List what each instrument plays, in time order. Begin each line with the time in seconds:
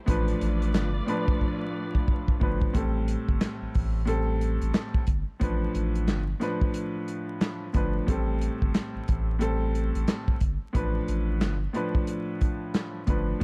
0.06 sub bass A1, upright piano A2 F3 D4 B4, string section A3 F4 B4 D5, kick, closed hi-hat
0.28 closed hi-hat
0.41 sub bass A1, closed hi-hat
0.62 closed hi-hat
0.74 sub bass G1, snare, clap, closed hi-hat
1.06 upright piano A2 F3 D4 B4, closed hi-hat
1.28 kick
1.41 kick
1.95 kick
2.08 kick
2.28 kick
2.40 sub bass G1, upright piano A2 F3 D4 B4, kick
2.61 kick
2.73 sub bass A1, upright piano A2 G3 C4 A4, kick, closed hi-hat
3.08 closed hi-hat
3.29 sub bass G1, kick
3.41 snare, clap, closed hi-hat
3.62 sub bass A1
3.74 sub bass A1, kick, open hi-hat
4.05 upright piano A2 G3 C4 A4, closed hi-hat
4.41 closed hi-hat
4.62 sub bass A1, closed hi-hat
4.74 snare, clap, closed hi-hat
4.94 kick
5.07 sub bass G1, kick, closed hi-hat
5.40 sub bass A1, upright piano A2 F3 D4 B4, kick, closed hi-hat
5.75 sub bass A1, closed hi-hat
5.95 closed hi-hat
6.08 sub bass G1, snare, clap, closed hi-hat
6.40 upright piano A2 F3 D4 B4, snare, closed hi-hat
6.61 kick
6.74 closed hi-hat
7.08 closed hi-hat
7.41 snare, clap, closed hi-hat
7.73 sub bass G1, upright piano A2 F3 D4 B4, kick, closed hi-hat
8.07 sub bass A1, upright piano A2 G3 C4 A4, kick, closed hi-hat
8.41 closed hi-hat
8.62 sub bass G1, kick
8.74 snare, clap, closed hi-hat
8.95 sub bass A1
9.08 sub bass A1, kick, closed hi-hat
9.39 upright piano A2 G3 C4 A4, closed hi-hat
9.75 closed hi-hat
9.95 sub bass A1, closed hi-hat
10.08 snare, clap, closed hi-hat
10.28 kick
10.40 sub bass G1, kick, closed hi-hat
10.73 sub bass A1, upright piano A2 F3 D4 B4, kick, closed hi-hat
11.08 sub bass A1, closed hi-hat
11.41 sub bass G1, snare, clap, closed hi-hat
11.73 upright piano A2 F3 D4 B4, closed hi-hat
11.95 kick
12.07 closed hi-hat
12.41 kick, closed hi-hat
12.74 snare, clap, closed hi-hat
13.06 sub bass G1, upright piano A2 F3 D4 B4, kick, closed hi-hat
13.40 upright piano A2